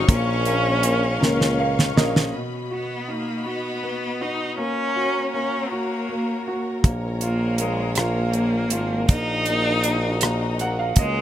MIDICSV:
0, 0, Header, 1, 7, 480
1, 0, Start_track
1, 0, Tempo, 750939
1, 54, Time_signature, 6, 3, 24, 8
1, 7168, End_track
2, 0, Start_track
2, 0, Title_t, "String section"
2, 0, Program_c, 0, 48
2, 0, Note_on_c, 0, 70, 71
2, 0, Note_on_c, 0, 73, 65
2, 0, Note_on_c, 0, 85, 81
2, 54, Note_on_c, 0, 77, 64
2, 1468, Note_off_c, 0, 70, 0
2, 1469, Note_off_c, 0, 73, 0
2, 1470, Note_off_c, 0, 85, 0
2, 1479, Note_off_c, 0, 77, 0
2, 1493, Note_on_c, 0, 75, 47
2, 1494, Note_on_c, 0, 66, 53
2, 1494, Note_on_c, 0, 83, 59
2, 2919, Note_off_c, 0, 75, 0
2, 2920, Note_off_c, 0, 66, 0
2, 2920, Note_off_c, 0, 83, 0
2, 2931, Note_on_c, 0, 58, 58
2, 2932, Note_on_c, 0, 73, 52
2, 2933, Note_on_c, 0, 82, 61
2, 2934, Note_on_c, 0, 66, 52
2, 2935, Note_on_c, 0, 70, 50
2, 4358, Note_off_c, 0, 58, 0
2, 4359, Note_off_c, 0, 73, 0
2, 4359, Note_off_c, 0, 82, 0
2, 4360, Note_off_c, 0, 66, 0
2, 4370, Note_on_c, 0, 65, 54
2, 4372, Note_on_c, 0, 73, 57
2, 4372, Note_on_c, 0, 82, 60
2, 5797, Note_off_c, 0, 65, 0
2, 5798, Note_off_c, 0, 73, 0
2, 5798, Note_off_c, 0, 82, 0
2, 5809, Note_on_c, 0, 82, 70
2, 5811, Note_on_c, 0, 75, 53
2, 5813, Note_on_c, 0, 66, 65
2, 7168, Note_off_c, 0, 66, 0
2, 7168, Note_off_c, 0, 70, 0
2, 7168, Note_off_c, 0, 75, 0
2, 7168, Note_off_c, 0, 82, 0
2, 7168, End_track
3, 0, Start_track
3, 0, Title_t, "Steel-string acoustic guitar"
3, 0, Program_c, 1, 25
3, 48, Note_on_c, 1, 46, 71
3, 52, Note_on_c, 1, 53, 73
3, 53, Note_on_c, 1, 58, 78
3, 56, Note_on_c, 1, 61, 85
3, 59, Note_on_c, 1, 65, 77
3, 61, Note_on_c, 1, 70, 83
3, 519, Note_off_c, 1, 58, 0
3, 527, Note_on_c, 1, 58, 54
3, 528, Note_off_c, 1, 61, 0
3, 531, Note_off_c, 1, 46, 0
3, 533, Note_off_c, 1, 53, 0
3, 533, Note_off_c, 1, 65, 0
3, 535, Note_on_c, 1, 61, 60
3, 538, Note_off_c, 1, 70, 0
3, 540, Note_on_c, 1, 65, 55
3, 546, Note_on_c, 1, 70, 66
3, 760, Note_off_c, 1, 70, 0
3, 764, Note_off_c, 1, 65, 0
3, 766, Note_off_c, 1, 61, 0
3, 768, Note_off_c, 1, 58, 0
3, 768, Note_on_c, 1, 70, 68
3, 772, Note_on_c, 1, 65, 69
3, 773, Note_on_c, 1, 61, 64
3, 776, Note_on_c, 1, 58, 61
3, 779, Note_on_c, 1, 53, 59
3, 782, Note_on_c, 1, 46, 50
3, 1241, Note_off_c, 1, 70, 0
3, 1248, Note_off_c, 1, 65, 0
3, 1248, Note_on_c, 1, 70, 57
3, 1254, Note_off_c, 1, 61, 0
3, 1255, Note_off_c, 1, 58, 0
3, 1255, Note_on_c, 1, 65, 51
3, 1257, Note_off_c, 1, 53, 0
3, 1258, Note_off_c, 1, 46, 0
3, 1262, Note_on_c, 1, 61, 49
3, 1267, Note_on_c, 1, 58, 51
3, 1491, Note_off_c, 1, 70, 0
3, 1495, Note_off_c, 1, 65, 0
3, 1498, Note_off_c, 1, 61, 0
3, 1501, Note_off_c, 1, 58, 0
3, 7168, End_track
4, 0, Start_track
4, 0, Title_t, "Cello"
4, 0, Program_c, 2, 42
4, 67, Note_on_c, 2, 61, 92
4, 995, Note_off_c, 2, 61, 0
4, 1742, Note_on_c, 2, 59, 59
4, 1978, Note_on_c, 2, 58, 64
4, 1988, Note_off_c, 2, 59, 0
4, 2215, Note_off_c, 2, 58, 0
4, 2219, Note_on_c, 2, 59, 70
4, 2693, Note_on_c, 2, 63, 70
4, 2702, Note_off_c, 2, 59, 0
4, 2927, Note_off_c, 2, 63, 0
4, 2931, Note_on_c, 2, 61, 86
4, 3387, Note_off_c, 2, 61, 0
4, 3414, Note_on_c, 2, 61, 67
4, 3657, Note_on_c, 2, 58, 62
4, 3666, Note_off_c, 2, 61, 0
4, 4195, Note_off_c, 2, 58, 0
4, 4622, Note_on_c, 2, 58, 67
4, 4863, Note_on_c, 2, 56, 62
4, 4872, Note_off_c, 2, 58, 0
4, 5092, Note_off_c, 2, 56, 0
4, 5096, Note_on_c, 2, 58, 75
4, 5789, Note_off_c, 2, 58, 0
4, 5814, Note_on_c, 2, 63, 99
4, 6747, Note_off_c, 2, 63, 0
4, 7014, Note_on_c, 2, 56, 86
4, 7168, Note_off_c, 2, 56, 0
4, 7168, End_track
5, 0, Start_track
5, 0, Title_t, "Grand piano"
5, 0, Program_c, 3, 0
5, 0, Control_c, 3, 64, 127
5, 0, Note_on_c, 3, 54, 51
5, 58, Note_on_c, 3, 58, 63
5, 62, Control_c, 3, 64, 0
5, 66, Note_off_c, 3, 54, 0
5, 187, Control_c, 3, 64, 127
5, 290, Note_off_c, 3, 58, 0
5, 300, Note_on_c, 3, 58, 53
5, 529, Note_off_c, 3, 58, 0
5, 539, Note_on_c, 3, 58, 51
5, 768, Note_off_c, 3, 58, 0
5, 778, Note_on_c, 3, 58, 53
5, 1011, Note_off_c, 3, 58, 0
5, 1020, Note_on_c, 3, 77, 60
5, 1021, Note_on_c, 3, 58, 54
5, 1241, Note_off_c, 3, 77, 0
5, 1248, Note_off_c, 3, 58, 0
5, 1257, Note_on_c, 3, 58, 52
5, 1258, Note_on_c, 3, 75, 65
5, 1480, Note_off_c, 3, 75, 0
5, 1489, Note_off_c, 3, 58, 0
5, 1498, Note_on_c, 3, 47, 41
5, 1503, Control_c, 3, 64, 0
5, 1595, Control_c, 3, 64, 127
5, 1732, Note_on_c, 3, 66, 36
5, 1969, Note_on_c, 3, 63, 38
5, 2201, Note_off_c, 3, 66, 0
5, 2210, Note_on_c, 3, 66, 39
5, 2450, Note_on_c, 3, 59, 41
5, 2680, Note_off_c, 3, 66, 0
5, 2690, Note_on_c, 3, 66, 43
5, 2906, Note_off_c, 3, 63, 0
5, 2910, Note_off_c, 3, 47, 0
5, 2918, Note_off_c, 3, 59, 0
5, 2925, Note_off_c, 3, 66, 0
5, 2926, Note_on_c, 3, 58, 47
5, 2944, Control_c, 3, 64, 0
5, 3065, Control_c, 3, 64, 127
5, 3171, Note_on_c, 3, 66, 40
5, 3404, Note_off_c, 3, 58, 0
5, 3414, Note_on_c, 3, 58, 41
5, 3647, Note_off_c, 3, 66, 0
5, 3656, Note_on_c, 3, 66, 43
5, 3883, Note_off_c, 3, 58, 0
5, 3893, Note_on_c, 3, 58, 42
5, 4129, Note_off_c, 3, 66, 0
5, 4139, Note_on_c, 3, 66, 46
5, 4359, Note_off_c, 3, 58, 0
5, 4370, Note_off_c, 3, 66, 0
5, 4376, Note_on_c, 3, 58, 47
5, 4383, Control_c, 3, 64, 0
5, 4486, Control_c, 3, 64, 127
5, 4617, Note_on_c, 3, 65, 46
5, 4843, Note_off_c, 3, 58, 0
5, 4853, Note_on_c, 3, 58, 45
5, 5089, Note_off_c, 3, 65, 0
5, 5099, Note_on_c, 3, 65, 49
5, 5327, Note_off_c, 3, 58, 0
5, 5336, Note_on_c, 3, 58, 44
5, 5565, Note_off_c, 3, 65, 0
5, 5575, Note_on_c, 3, 65, 50
5, 5800, Note_off_c, 3, 58, 0
5, 5807, Note_off_c, 3, 65, 0
5, 5819, Note_on_c, 3, 58, 52
5, 5822, Control_c, 3, 64, 0
5, 5916, Control_c, 3, 64, 127
5, 6052, Note_off_c, 3, 58, 0
5, 6062, Note_on_c, 3, 58, 44
5, 6286, Note_off_c, 3, 58, 0
5, 6295, Note_on_c, 3, 58, 46
5, 6527, Note_off_c, 3, 58, 0
5, 6536, Note_on_c, 3, 58, 49
5, 6772, Note_off_c, 3, 58, 0
5, 6782, Note_on_c, 3, 58, 50
5, 6783, Note_on_c, 3, 78, 63
5, 6889, Note_off_c, 3, 78, 0
5, 6896, Note_on_c, 3, 77, 58
5, 7006, Note_off_c, 3, 77, 0
5, 7009, Note_off_c, 3, 58, 0
5, 7019, Note_on_c, 3, 58, 45
5, 7022, Note_on_c, 3, 75, 61
5, 7168, Note_off_c, 3, 58, 0
5, 7168, Note_off_c, 3, 75, 0
5, 7168, End_track
6, 0, Start_track
6, 0, Title_t, "Tuba"
6, 0, Program_c, 4, 58
6, 54, Note_on_c, 4, 34, 97
6, 748, Note_off_c, 4, 34, 0
6, 774, Note_on_c, 4, 37, 84
6, 1228, Note_off_c, 4, 37, 0
6, 1253, Note_on_c, 4, 34, 72
6, 1479, Note_off_c, 4, 34, 0
6, 4372, Note_on_c, 4, 34, 85
6, 5569, Note_on_c, 4, 32, 72
6, 5579, Note_off_c, 4, 34, 0
6, 5797, Note_off_c, 4, 32, 0
6, 5809, Note_on_c, 4, 34, 87
6, 6984, Note_off_c, 4, 34, 0
6, 7009, Note_on_c, 4, 37, 75
6, 7168, Note_off_c, 4, 37, 0
6, 7168, End_track
7, 0, Start_track
7, 0, Title_t, "Drums"
7, 55, Note_on_c, 9, 36, 104
7, 56, Note_on_c, 9, 42, 74
7, 119, Note_off_c, 9, 36, 0
7, 120, Note_off_c, 9, 42, 0
7, 291, Note_on_c, 9, 42, 49
7, 355, Note_off_c, 9, 42, 0
7, 532, Note_on_c, 9, 42, 65
7, 596, Note_off_c, 9, 42, 0
7, 784, Note_on_c, 9, 38, 54
7, 847, Note_off_c, 9, 38, 0
7, 902, Note_on_c, 9, 38, 50
7, 966, Note_off_c, 9, 38, 0
7, 1144, Note_on_c, 9, 38, 68
7, 1208, Note_off_c, 9, 38, 0
7, 1262, Note_on_c, 9, 38, 92
7, 1326, Note_off_c, 9, 38, 0
7, 1383, Note_on_c, 9, 38, 88
7, 1446, Note_off_c, 9, 38, 0
7, 4372, Note_on_c, 9, 36, 87
7, 4373, Note_on_c, 9, 42, 66
7, 4436, Note_off_c, 9, 36, 0
7, 4437, Note_off_c, 9, 42, 0
7, 4608, Note_on_c, 9, 42, 43
7, 4672, Note_off_c, 9, 42, 0
7, 4846, Note_on_c, 9, 42, 58
7, 4910, Note_off_c, 9, 42, 0
7, 5084, Note_on_c, 9, 42, 75
7, 5099, Note_on_c, 9, 37, 84
7, 5148, Note_off_c, 9, 42, 0
7, 5162, Note_off_c, 9, 37, 0
7, 5328, Note_on_c, 9, 42, 34
7, 5392, Note_off_c, 9, 42, 0
7, 5563, Note_on_c, 9, 42, 63
7, 5627, Note_off_c, 9, 42, 0
7, 5808, Note_on_c, 9, 42, 67
7, 5810, Note_on_c, 9, 36, 93
7, 5872, Note_off_c, 9, 42, 0
7, 5874, Note_off_c, 9, 36, 0
7, 6044, Note_on_c, 9, 42, 43
7, 6108, Note_off_c, 9, 42, 0
7, 6287, Note_on_c, 9, 42, 56
7, 6351, Note_off_c, 9, 42, 0
7, 6525, Note_on_c, 9, 42, 78
7, 6540, Note_on_c, 9, 37, 85
7, 6589, Note_off_c, 9, 42, 0
7, 6604, Note_off_c, 9, 37, 0
7, 6771, Note_on_c, 9, 42, 37
7, 6835, Note_off_c, 9, 42, 0
7, 7004, Note_on_c, 9, 42, 66
7, 7010, Note_on_c, 9, 36, 78
7, 7068, Note_off_c, 9, 42, 0
7, 7074, Note_off_c, 9, 36, 0
7, 7168, End_track
0, 0, End_of_file